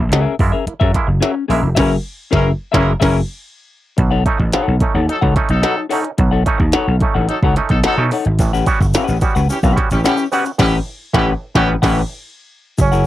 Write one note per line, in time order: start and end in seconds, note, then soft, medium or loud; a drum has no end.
0.00 0.11 A#1 medium
0.12 0.24 C#2 medium
0.12 0.25 F#3 medium
0.12 0.34 C#4 medium
0.12 0.34 G#4 medium
0.12 0.34 A#4 medium
0.12 0.34 E5 medium
0.12 snare loud
0.12 closed hi-hat medium
0.39 0.52 F#2 loud
0.39 0.52 G#3 medium
0.39 0.53 A#3 medium
0.39 0.53 E4 medium
0.39 muted clean electric guitar stroke soft
0.39 kick loud
0.39 open hi-hat soft
0.52 0.59 A#3 soft
0.52 0.66 C#4 soft
0.52 0.59 E4 soft
0.52 0.66 G#4 medium
0.52 0.67 A#4 medium
0.52 0.67 E5 medium
0.67 0.73 A#3 soft
0.67 0.73 E4 soft
0.67 muted slap bass stroke soft
0.67 muted clean electric guitar stroke soft
0.67 closed hi-hat medium
0.80 0.93 F#2 loud
0.80 0.94 F#3 medium
0.80 0.93 C#4 medium
0.80 0.93 G#4 medium
0.80 0.93 A#4 medium
0.80 0.93 E5 medium
0.80 kick loud
0.94 1.08 G#3 medium
0.94 1.07 A#3 medium
0.94 1.08 E4 medium
0.94 muted clean electric guitar stroke soft
0.94 kick medium
0.94 snare soft
0.94 closed hi-hat medium
1.07 1.20 F#1 medium
1.07 muted clean electric guitar stroke soft
1.21 1.35 F#3 medium
1.21 1.43 C#4 medium
1.21 1.33 G#4 medium
1.21 1.34 A#4 medium
1.21 1.33 E5 medium
1.21 snare medium
1.21 closed hi-hat medium
1.34 muted clean electric guitar stroke soft
1.48 1.62 A#1 medium
1.48 1.62 G#3 medium
1.48 1.62 A#3 medium
1.48 1.66 C#4 medium
1.48 1.62 E4 medium
1.48 1.62 G#4 medium
1.48 1.62 A#4 medium
1.48 1.62 E5 medium
1.48 snare soft
1.48 open hi-hat medium
1.63 1.75 F1 medium
1.63 1.69 A#3 soft
1.63 1.69 E4 soft
1.63 muted clean electric guitar stroke soft
1.75 1.96 F#1 medium
1.75 1.91 E3 loud
1.75 1.96 C#4 loud
1.75 1.91 C#4 medium
1.75 1.96 G#4 medium
1.75 1.95 A#4 loud
1.75 1.91 A#4 medium
1.75 1.95 E5 loud
1.75 kick loud
1.75 snare loud
1.75 crash medium
2.31 2.51 F#1 loud
2.31 2.48 E3 medium
2.31 2.50 C#4 medium
2.31 2.47 C#4 medium
2.31 2.51 G#4 medium
2.31 2.51 A#4 medium
2.31 2.47 A#4 loud
2.31 2.51 E5 medium
2.31 kick loud
2.31 snare medium
2.72 2.93 F#1 loud
2.72 2.89 E3 loud
2.72 2.92 G#3 medium
2.72 2.93 A#3 medium
2.72 2.92 C#4 medium
2.72 2.88 C#4 loud
2.72 2.93 E4 loud
2.72 2.92 G#4 medium
2.72 2.92 A#4 loud
2.72 2.91 E5 loud
2.72 kick loud
2.72 snare loud
2.76 2.89 A#4 loud
3.00 3.20 F#1 medium
3.00 3.16 E3 loud
3.00 3.20 C#4 loud
3.00 3.16 C#4 medium
3.00 3.20 G#4 loud
3.00 3.20 A#4 loud
3.00 3.16 A#4 loud
3.00 3.19 E5 medium
3.00 kick loud
3.00 snare loud
3.00 crash medium
3.97 4.23 B1 medium
3.97 4.11 B2 medium
3.97 4.11 F#3 medium
3.97 muted clean electric guitar stroke soft
3.97 kick loud
3.97 closed hi-hat medium
4.11 4.25 D#4 medium
4.11 4.25 A4 medium
4.11 4.25 C#5 medium
4.11 4.25 F#5 medium
4.26 4.38 A3 medium
4.26 4.38 C#4 medium
4.26 4.38 D#4 medium
4.26 muted clean electric guitar stroke soft
4.26 kick medium
4.26 closed hi-hat medium
4.38 4.52 A1 loud
4.38 4.45 C#4 soft
4.38 4.45 D#4 soft
4.38 muted clean electric guitar stroke soft
4.38 kick medium
4.53 4.66 B2 medium
4.53 4.66 F#3 medium
4.53 4.75 D#4 medium
4.53 4.75 A4 medium
4.53 4.76 C#5 medium
4.53 4.76 F#5 medium
4.53 snare loud
4.53 closed hi-hat medium
4.68 4.80 B1 medium
4.80 4.94 A3 medium
4.80 4.94 C#4 medium
4.80 4.94 D#4 medium
4.80 muted clean electric guitar stroke soft
4.80 kick loud
4.80 closed hi-hat medium
4.94 5.07 D#2 medium
4.94 5.00 C#4 soft
4.94 5.00 D#4 soft
4.94 5.06 D#4 soft
4.94 5.07 A4 medium
4.94 5.08 C#5 medium
4.94 5.08 F#5 medium
5.09 5.17 F#3 medium
5.09 5.14 C#4 soft
5.09 5.17 D#4 medium
5.09 5.14 D#4 soft
5.09 5.18 A4 medium
5.09 muted clean electric guitar stroke soft
5.09 closed hi-hat medium
5.21 5.35 C#2 medium
5.21 5.35 B2 medium
5.21 5.35 F#3 medium
5.21 5.35 D#4 medium
5.21 5.35 A4 medium
5.21 5.35 C#5 medium
5.21 5.36 F#5 medium
5.21 kick loud
5.36 5.49 A3 medium
5.36 5.49 C#4 medium
5.36 5.49 D#4 medium
5.36 muted clean electric guitar stroke soft
5.36 kick medium
5.36 snare soft
5.36 closed hi-hat medium
5.49 5.62 B1 medium
5.49 5.58 F#3 medium
5.49 5.58 D#4 medium
5.49 5.58 A4 medium
5.49 muted clean electric guitar stroke soft
5.49 closed hi-hat medium
5.62 5.76 B2 medium
5.62 5.80 F#3 loud
5.62 5.76 F#3 medium
5.62 5.80 D#4 loud
5.62 5.85 D#4 medium
5.62 5.80 A4 loud
5.62 5.77 A4 medium
5.62 5.77 C#5 medium
5.62 5.76 F#5 medium
5.62 snare medium
5.62 closed hi-hat medium
5.78 muted clean electric guitar stroke soft
5.89 6.04 A3 medium
5.89 6.04 C#4 medium
5.89 6.07 D#4 medium
5.89 6.04 D#4 medium
5.89 6.03 A4 medium
5.89 6.02 C#5 medium
5.89 6.01 F#5 medium
5.89 snare soft
5.89 open hi-hat medium
6.03 6.11 C#4 soft
6.03 6.11 D#4 soft
6.03 muted clean electric guitar stroke soft
6.03 closed hi-hat soft
6.18 6.43 B1 medium
6.18 6.31 B2 medium
6.18 6.32 F#3 medium
6.18 muted clean electric guitar stroke soft
6.18 kick loud
6.18 closed hi-hat loud
6.31 6.44 D#4 medium
6.31 6.45 A4 medium
6.31 6.45 C#5 medium
6.31 6.45 F#5 medium
6.46 6.59 A3 medium
6.46 6.59 C#4 medium
6.46 6.59 D#4 medium
6.46 muted clean electric guitar stroke soft
6.46 kick medium
6.46 closed hi-hat medium
6.58 6.72 D#2 medium
6.58 6.66 C#4 soft
6.58 6.66 D#4 soft
6.58 muted clean electric guitar stroke soft
6.58 kick medium
6.72 6.87 B2 medium
6.72 6.87 F#3 medium
6.72 6.95 D#4 medium
6.72 6.95 A4 medium
6.72 6.95 C#5 medium
6.72 6.96 F#5 medium
6.72 snare loud
6.72 closed hi-hat medium
6.88 7.00 B1 medium
7.01 7.14 A3 medium
7.01 7.14 C#4 medium
7.01 7.14 D#4 medium
7.01 muted clean electric guitar stroke soft
7.01 kick loud
7.01 closed hi-hat medium
7.15 7.27 A1 loud
7.15 7.21 C#4 soft
7.15 7.28 D#4 medium
7.15 7.21 D#4 soft
7.15 7.28 A4 medium
7.15 7.29 C#5 medium
7.15 7.29 F#5 medium
7.28 7.38 F#3 medium
7.28 7.35 C#4 soft
7.28 7.37 D#4 medium
7.28 7.35 D#4 soft
7.28 7.37 A4 medium
7.28 muted clean electric guitar stroke soft
7.28 closed hi-hat medium
7.43 7.55 C#2 medium
7.43 7.56 B2 medium
7.43 7.56 F#3 medium
7.43 7.55 D#4 medium
7.43 7.56 A4 medium
7.43 7.56 C#5 medium
7.43 7.56 F#5 medium
7.43 kick loud
7.56 7.69 A3 medium
7.56 7.69 C#4 medium
7.56 7.69 D#4 medium
7.56 snare soft
7.56 closed hi-hat medium
7.69 7.83 B1 medium
7.69 7.78 F#3 medium
7.69 7.78 D#4 medium
7.69 7.78 A4 medium
7.69 muted clean electric guitar stroke medium
7.69 kick loud
7.69 closed hi-hat medium
7.83 7.97 B2 medium
7.83 7.97 F#3 medium
7.83 8.03 F#3 loud
7.83 8.06 D#4 medium
7.83 8.03 D#4 loud
7.83 7.98 A4 medium
7.83 8.02 A4 loud
7.83 7.97 C#5 medium
7.83 7.97 F#5 medium
7.83 snare loud
7.83 closed hi-hat medium
7.98 8.10 B2 medium
7.98 8.11 A3 medium
7.98 8.10 C#4 medium
7.98 8.11 D#4 medium
7.98 muted clean electric guitar stroke medium
8.11 8.17 C#4 soft
8.11 8.29 D#4 medium
8.11 8.17 D#4 soft
8.11 8.27 A4 medium
8.11 8.26 C#5 medium
8.11 8.26 F#5 medium
8.11 snare soft
8.11 open hi-hat medium
8.25 8.38 G#1 medium
8.25 muted clean electric guitar stroke medium
8.25 closed hi-hat soft
8.39 8.63 A1 medium
8.39 8.52 A2 medium
8.39 8.52 E3 medium
8.39 muted clean electric guitar stroke soft
8.39 kick loud
8.39 closed hi-hat loud
8.39 shaker medium
8.53 8.66 C#4 medium
8.53 8.67 G4 medium
8.53 8.67 B4 medium
8.53 8.67 F#5 medium
8.53 shaker medium
8.66 8.79 G3 medium
8.66 8.79 B3 medium
8.66 8.79 C#4 medium
8.66 8.80 F#4 loud
8.66 kick medium
8.66 closed hi-hat medium
8.66 shaker medium
8.80 8.93 G1 loud
8.80 8.86 C#4 soft
8.80 8.86 F#4 soft
8.80 muted clean electric guitar stroke medium
8.80 kick medium
8.80 shaker medium
8.94 9.07 A2 medium
8.94 9.07 E3 medium
8.94 9.16 C#4 medium
8.94 9.17 G4 medium
8.94 9.17 B4 medium
8.94 9.17 F#5 medium
8.94 snare loud
8.94 closed hi-hat medium
8.94 shaker medium
9.08 9.20 A1 medium
9.08 shaker medium
9.21 9.34 G3 medium
9.21 9.34 B3 medium
9.21 9.34 C#4 medium
9.21 9.34 F#4 medium
9.21 muted clean electric guitar stroke medium
9.21 kick loud
9.21 closed hi-hat medium
9.21 shaker soft
9.35 9.48 C#2 medium
9.35 9.41 C#4 soft
9.35 9.48 C#4 soft
9.35 9.41 F#4 soft
9.35 9.48 G4 soft
9.35 9.49 B4 medium
9.35 9.49 F#5 medium
9.35 shaker medium
9.49 9.58 E3 medium
9.49 9.58 C#4 medium
9.49 9.55 C#4 soft
9.49 9.55 F#4 soft
9.49 9.58 G4 medium
9.49 muted clean electric guitar stroke soft
9.49 closed hi-hat medium
9.49 shaker medium
9.63 9.75 B1 medium
9.63 9.76 A2 medium
9.63 9.76 E3 medium
9.63 9.76 C#4 medium
9.63 9.76 G4 medium
9.63 9.77 B4 medium
9.63 9.77 F#5 medium
9.63 kick loud
9.63 shaker medium
9.76 9.89 G3 medium
9.76 9.89 B3 medium
9.76 9.89 C#4 medium
9.76 9.89 F#4 medium
9.76 muted clean electric guitar stroke soft
9.76 kick medium
9.76 snare soft
9.76 closed hi-hat medium
9.91 10.03 A1 medium
9.91 10.00 E3 medium
9.91 10.00 C#4 medium
9.91 10.00 G4 medium
9.91 muted clean electric guitar stroke soft
9.91 closed hi-hat medium
9.91 shaker medium
10.04 10.17 A2 medium
10.04 10.17 E3 medium
10.04 10.23 E3 loud
10.04 10.26 C#4 medium
10.04 10.23 C#4 loud
10.04 10.18 G4 medium
10.04 10.23 G4 loud
10.04 10.18 B4 medium
10.04 10.17 F#5 loud
10.04 snare medium
10.04 closed hi-hat medium
10.04 shaker medium
10.17 muted clean electric guitar stroke medium
10.17 shaker medium
10.32 10.44 G3 medium
10.32 10.44 B3 medium
10.32 10.44 C#4 medium
10.32 10.49 C#4 medium
10.32 10.45 F#4 medium
10.32 10.46 G4 medium
10.32 10.46 B4 medium
10.32 10.46 F#5 medium
10.32 snare soft
10.32 open hi-hat medium
10.32 shaker soft
10.45 10.51 C#4 soft
10.45 10.51 F#4 medium
10.45 muted clean electric guitar stroke medium
10.45 closed hi-hat soft
10.45 shaker soft
10.58 10.78 A1 medium
10.58 10.77 A2 loud
10.58 10.78 E3 medium
10.58 10.73 E3 medium
10.58 10.73 C#4 medium
10.58 10.79 C#4 loud
10.58 10.74 G4 loud
10.58 10.78 G4 loud
10.58 10.78 B4 loud
10.58 10.78 F#5 medium
10.58 kick loud
10.58 snare loud
10.58 crash medium
11.13 11.33 A1 loud
11.13 11.32 A2 loud
11.13 11.32 E3 loud
11.13 11.29 E3 loud
11.13 11.32 C#4 loud
11.13 11.29 C#4 medium
11.13 11.33 G4 medium
11.13 11.29 G4 loud
11.13 11.33 B4 medium
11.13 11.33 F#5 loud
11.13 kick loud
11.13 snare loud
11.53 11.74 A1 loud
11.53 11.68 E3 loud
11.53 11.74 G3 loud
11.53 11.74 B3 medium
11.53 11.68 C#4 loud
11.53 11.74 C#4 loud
11.53 11.75 C#4 loud
11.53 11.74 F#4 loud
11.53 11.69 G4 loud
11.53 11.75 G4 loud
11.53 11.75 B4 loud
11.53 11.74 F#5 loud
11.53 kick loud
11.53 snare loud
11.82 12.01 A1 loud
11.82 12.01 A2 loud
11.82 12.01 E3 loud
11.82 11.98 E3 loud
11.82 12.02 C#4 loud
11.82 11.98 C#4 medium
11.82 12.02 G4 loud
11.82 11.98 G4 medium
11.82 12.01 B4 loud
11.82 12.01 F#5 loud
11.82 kick loud
11.82 snare loud
11.82 crash medium
12.78 13.03 F#1 medium
12.78 13.06 C#4 medium
12.78 muted clean electric guitar stroke soft
12.78 kick loud
12.78 closed hi-hat loud
12.78 shaker medium
12.92 13.05 E4 medium
12.92 13.06 G#4 medium
12.92 13.05 A#4 medium
12.92 13.05 F#5 medium
12.92 shaker medium